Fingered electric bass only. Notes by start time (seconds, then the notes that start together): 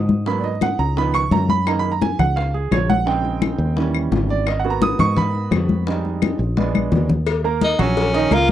Already playing: G#2
0.79 C#2
1.31 F#2
2.19 C#2
2.71 A#1
3.58 D#2
4.11 G#1
4.99 G#2
5.51 F2
6.39 A#1
6.92 D#2
7.79 A#1
8.31 C#2